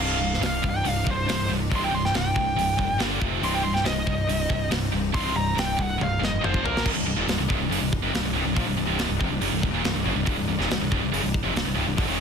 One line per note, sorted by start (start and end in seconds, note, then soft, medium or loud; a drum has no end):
0.00 0.36 C1 medium
0.00 0.18 C2 medium
0.00 0.19 G2 medium
0.00 0.19 C3 loud
0.00 2.96 C3 medium
0.00 3.17 G3 medium
0.00 3.18 D4 medium
0.00 2.96 D#4 medium
0.00 0.41 F5 medium
0.19 0.39 C2 medium
0.19 0.39 G2 medium
0.34 snare soft
0.41 0.60 C1 medium
0.41 0.61 C2 medium
0.41 0.61 G2 medium
0.41 snare loud
0.41 open hi-hat medium
0.46 0.65 F5 loud
0.62 0.83 C1 medium
0.62 0.82 C2 medium
0.62 0.82 G2 medium
0.62 kick medium
0.70 0.89 G5 medium
0.84 1.04 C1 medium
0.84 1.03 C2 medium
0.84 1.04 G2 medium
0.84 open hi-hat medium
0.89 1.08 F5 medium
1.04 1.25 C1 loud
1.04 1.24 C2 medium
1.04 1.24 G2 medium
1.04 kick medium
1.11 1.50 C5 loud
1.25 1.47 C1 medium
1.25 1.46 C2 medium
1.25 1.46 G2 medium
1.25 open hi-hat medium
1.30 snare loud
1.48 1.68 C1 loud
1.48 1.68 C2 medium
1.48 1.68 G2 medium
1.70 1.90 C1 loud
1.70 1.90 C2 medium
1.70 1.91 G2 medium
1.70 1.91 C3 loud
1.70 kick loud
1.70 open hi-hat medium
1.76 1.84 C6 loud
1.84 1.93 G5 medium
1.91 2.11 C1 medium
1.91 2.11 C2 medium
1.91 2.11 G2 medium
1.91 2.04 C6 medium
2.05 2.14 G5 loud
2.05 snare soft
2.13 2.32 C1 medium
2.13 2.33 C2 medium
2.13 2.33 G2 medium
2.13 2.98 G5 medium
2.13 snare loud
2.13 open hi-hat medium
2.34 2.54 C1 medium
2.34 2.54 C2 medium
2.34 2.54 G2 medium
2.34 kick medium
2.56 2.75 C1 loud
2.56 2.76 C2 medium
2.56 2.76 G2 loud
2.56 open hi-hat medium
2.77 2.97 F1 medium
2.77 2.97 C2 medium
2.77 2.97 G2 medium
2.77 kick medium
2.98 3.18 G1 medium
2.98 3.19 G2 medium
2.98 3.19 D3 loud
2.98 3.21 D3 medium
2.98 3.19 G3 loud
2.98 snare loud
2.98 open hi-hat medium
3.19 3.40 F1 medium
3.19 3.40 F2 medium
3.19 3.41 C3 medium
3.19 3.41 C3 loud
3.19 3.41 F3 medium
3.19 3.41 F3 loud
3.19 3.40 C4 medium
3.19 kick loud
3.41 3.79 C1 medium
3.41 3.62 C2 loud
3.41 3.62 G2 medium
3.41 6.39 C3 medium
3.41 3.62 C3 loud
3.41 6.39 G3 medium
3.41 6.38 C4 medium
3.41 6.38 D#4 medium
3.41 3.54 C6 loud
3.41 open hi-hat medium
3.54 3.64 G5 medium
3.63 3.83 C2 medium
3.63 3.83 G2 medium
3.63 3.74 C6 loud
3.74 3.84 G5 loud
3.74 snare soft
3.84 4.03 C1 medium
3.84 4.04 C2 medium
3.84 4.05 G2 loud
3.84 4.68 D#5 loud
3.84 snare loud
3.84 open hi-hat medium
4.06 4.26 C1 medium
4.06 4.25 C2 medium
4.06 4.26 G2 medium
4.06 kick medium
4.27 4.47 C1 medium
4.27 4.47 C2 medium
4.27 4.47 G2 medium
4.27 open hi-hat medium
4.49 4.69 C1 medium
4.49 4.68 C2 medium
4.49 4.68 G2 medium
4.49 kick medium
4.71 4.90 C1 loud
4.71 4.90 C2 medium
4.71 4.90 G2 medium
4.71 snare loud
4.71 open hi-hat medium
4.91 5.11 C1 loud
4.91 5.11 C2 medium
4.91 5.11 G2 medium
5.14 5.33 C1 loud
5.14 5.34 C2 loud
5.14 5.34 G2 loud
5.14 5.34 C3 loud
5.14 5.34 C6 loud
5.14 kick loud
5.14 open hi-hat medium
5.35 5.54 C1 loud
5.35 5.54 C2 medium
5.35 5.54 G2 medium
5.35 5.56 A#5 medium
5.56 5.75 C1 loud
5.56 5.75 C2 medium
5.56 5.76 G2 medium
5.56 5.78 G5 medium
5.56 snare loud
5.56 open hi-hat medium
5.77 5.97 C1 loud
5.77 5.96 C2 medium
5.77 5.96 G2 medium
5.77 kick loud
5.82 6.00 F#5 medium
5.98 6.18 C1 loud
5.98 6.17 C2 medium
5.98 6.17 G2 loud
5.98 high tom medium
6.03 6.22 F5 loud
6.19 6.39 F1 loud
6.19 6.39 C2 medium
6.19 6.39 G2 medium
6.23 6.43 D#5 medium
6.23 snare medium
6.41 6.61 F1 loud
6.41 6.61 F2 medium
6.41 6.61 C3 loud
6.41 6.83 F3 medium
6.41 6.61 F3 loud
6.41 6.62 C4 medium
6.41 6.62 F4 medium
6.41 mid tom medium
6.45 6.64 C5 medium
6.54 kick medium
6.62 6.82 A#1 loud
6.62 6.83 A#2 medium
6.62 6.83 F3 medium
6.62 6.84 A#3 medium
6.62 6.83 A#3 loud
6.62 6.84 F4 medium
6.62 6.85 A#4 loud
6.62 floor tom medium
6.77 snare loud
6.84 6.95 C1 medium
6.84 6.94 C2 loud
6.84 6.94 G2 loud
6.84 12.20 C3 medium
6.84 12.20 G3 medium
6.84 12.20 D4 medium
6.84 12.20 D#4 medium
6.84 kick loud
6.84 crash loud
6.95 7.05 C1 medium
6.95 7.05 C2 medium
6.95 7.05 G2 medium
7.05 7.15 C1 medium
7.05 7.16 C2 medium
7.05 7.17 G2 medium
7.16 7.26 D#1 medium
7.16 7.27 D#2 medium
7.16 7.27 A#2 loud
7.27 7.37 C1 medium
7.27 7.37 C2 medium
7.27 7.38 G2 medium
7.27 snare loud
7.27 open hi-hat medium
7.38 7.48 C1 medium
7.38 7.47 C2 medium
7.38 7.48 G2 medium
7.48 7.59 C1 loud
7.48 7.58 C2 medium
7.48 7.59 G2 loud
7.48 kick medium
7.59 7.69 C1 medium
7.59 7.69 C2 medium
7.59 7.70 G2 medium
7.69 7.80 F#1 loud
7.69 7.80 F#2 loud
7.69 7.80 C#3 loud
7.69 open hi-hat medium
7.81 8.00 C1 medium
7.81 7.98 C2 medium
7.81 7.98 G2 medium
7.93 kick medium
8.02 8.12 F1 medium
8.02 8.13 F2 medium
8.02 8.13 C3 loud
8.12 8.22 C1 medium
8.12 8.24 C2 medium
8.12 8.24 G2 medium
8.12 snare loud
8.12 open hi-hat medium
8.23 8.33 C1 medium
8.23 8.34 C2 medium
8.23 8.35 G2 medium
8.34 8.44 C1 loud
8.34 8.44 C2 medium
8.34 8.45 G2 loud
8.44 8.54 C1 medium
8.44 8.55 C2 medium
8.44 8.55 G2 medium
8.55 8.66 A#1 loud
8.55 8.65 A#2 loud
8.55 8.65 F3 loud
8.55 kick loud
8.55 open hi-hat medium
8.66 8.76 C1 medium
8.66 8.75 C2 medium
8.66 8.76 G2 medium
8.77 8.87 C1 medium
8.77 8.84 C2 medium
8.77 8.85 G2 medium
8.85 9.07 C1 loud
8.85 9.07 C2 medium
8.85 9.07 G2 medium
8.85 9.08 C3 loud
8.99 snare loud
8.99 open hi-hat medium
9.08 9.19 C1 medium
9.08 9.16 C2 medium
9.08 9.18 G2 medium
9.17 9.30 F1 loud
9.17 9.28 F2 loud
9.17 9.29 C3 loud
9.17 kick medium
9.30 9.40 C1 medium
9.30 9.40 C2 medium
9.30 9.41 G2 medium
9.41 9.51 F#1 medium
9.41 9.50 F#2 loud
9.41 9.51 C#3 loud
9.41 open hi-hat medium
9.51 9.62 C1 medium
9.51 9.61 C2 medium
9.51 9.61 G2 medium
9.62 9.72 C1 medium
9.62 9.70 C2 medium
9.62 9.71 G2 medium
9.62 kick medium
9.71 9.83 D#1 medium
9.71 9.82 D#2 loud
9.71 9.82 A#2 loud
9.82 9.94 C1 medium
9.82 9.92 C2 medium
9.82 9.92 G2 medium
9.82 snare loud
9.82 open hi-hat medium
9.93 10.04 C1 medium
9.93 10.03 C2 medium
9.93 10.04 G2 medium
10.03 10.15 F#1 loud
10.03 10.14 F#2 medium
10.03 10.14 C#3 loud
10.14 10.25 C1 medium
10.14 10.24 C2 medium
10.14 10.25 G2 medium
10.25 10.36 C1 medium
10.25 10.36 C2 medium
10.25 10.36 G2 loud
10.25 kick loud
10.25 open hi-hat medium
10.37 10.47 C1 medium
10.37 10.46 C2 medium
10.37 10.46 G2 medium
10.47 10.57 C1 medium
10.47 10.58 C2 medium
10.47 10.58 G2 medium
10.58 10.68 D#1 loud
10.58 10.68 D#2 medium
10.58 10.69 A#2 loud
10.58 snare soft
10.70 10.79 C1 medium
10.70 10.80 C2 medium
10.70 10.80 G2 medium
10.70 snare loud
10.70 open hi-hat medium
10.80 10.89 C1 medium
10.80 10.91 C2 medium
10.80 10.91 G2 medium
10.92 11.01 C1 loud
10.92 11.01 C2 loud
10.92 11.02 G2 loud
10.92 kick medium
11.02 11.12 C1 medium
11.02 11.12 C2 medium
11.02 11.13 G2 medium
11.12 11.22 F#1 medium
11.12 11.23 F#2 loud
11.12 11.23 C#3 loud
11.12 open hi-hat medium
11.23 11.43 C1 medium
11.23 11.40 C2 medium
11.23 11.40 G2 medium
11.34 kick medium
11.44 11.53 F1 medium
11.44 11.54 F2 loud
11.44 11.54 C3 loud
11.54 11.64 C1 medium
11.54 11.64 C2 medium
11.54 11.64 G2 medium
11.54 snare loud
11.54 open hi-hat medium
11.65 11.75 C1 medium
11.65 11.74 C2 medium
11.65 11.75 G2 medium
11.75 11.86 C1 loud
11.75 11.86 C2 medium
11.75 11.86 G2 loud
11.86 11.96 C1 medium
11.86 11.97 C2 medium
11.86 11.96 G2 medium
11.97 12.08 G1 loud
11.97 12.07 G2 medium
11.97 12.07 D3 loud
11.97 kick loud
11.97 open hi-hat medium
12.08 12.20 D#1 medium
12.08 12.20 D#2 medium
12.08 12.20 A#2 loud
12.08 12.20 D#3 loud